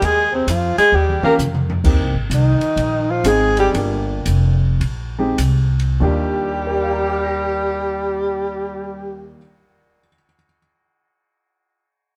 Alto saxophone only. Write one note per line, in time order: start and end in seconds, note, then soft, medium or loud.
0.05 0.34 G#4 medium
0.35 0.53 C4 medium
0.52 0.78 F4 medium
0.78 0.97 G#4 loud
0.96 1.24 G4 medium
1.25 1.34 A#4 medium
2.34 3.12 D#4 medium
3.10 3.30 F4 medium
3.28 3.59 G#4 medium
3.60 3.69 G4 medium
6.03 9.35 G4 medium